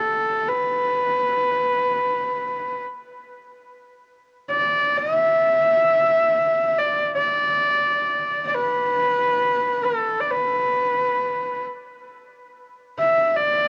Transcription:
0.00 0.51 A4 medium
0.49 2.84 B4 medium
4.50 4.99 D5 medium
4.98 6.80 E5 loud
6.79 7.13 D5 medium
7.15 8.43 D5 medium
8.47 8.56 D5 soft
8.55 9.86 B4 medium
9.85 10.22 A4 medium
10.20 10.32 D5 medium
10.31 11.65 B4 medium
12.99 13.38 E5 medium
13.36 13.68 D5 medium

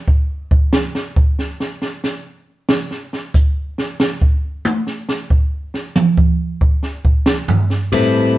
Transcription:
0.08 kick medium
0.51 kick medium
0.73 snare medium
0.73 hi-hat pedal medium
0.95 snare soft
1.16 kick medium
1.39 snare soft
1.60 snare soft
1.82 snare soft
2.04 snare medium
2.04 hi-hat pedal medium
2.69 snare loud
2.91 snare soft
3.13 snare soft
3.34 kick medium
3.34 hi-hat pedal medium
3.78 snare soft
4.00 snare medium
4.21 kick medium
4.65 hi-hat pedal medium
4.65 high tom medium
4.87 snare soft
5.09 snare medium
5.30 kick medium
5.74 snare soft
5.96 hi-hat pedal medium
5.96 mid tom loud
6.18 kick medium
6.61 kick medium
6.83 snare soft
7.05 kick medium
7.26 snare medium
7.26 hi-hat pedal medium
7.48 floor tom medium
7.70 snare soft
7.92 8.38 A2 medium
7.92 8.38 G3 medium
7.92 8.38 C4 medium
7.92 8.38 E4 medium
7.92 8.38 A4 medium
7.92 8.38 B4 medium
7.92 kick soft
7.92 ride medium

